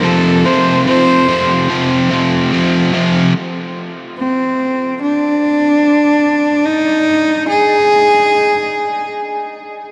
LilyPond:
<<
  \new Staff \with { instrumentName = "Cello" } { \time 4/4 \key f \dorian \tempo 4 = 72 a'8 c''8 c''4 r2 | r4 c'4 d'2 | ees'4 aes'2 r4 | }
  \new Staff \with { instrumentName = "Distorted electric guitar" } { \clef bass \time 4/4 \key f \dorian <f, c f>8 <f, c f>8 <f, c f>8 <f, c f>8 <f, c f>8 <f, c f>8 <f, c f>8 <f, c f>8 | r1 | r1 | }
>>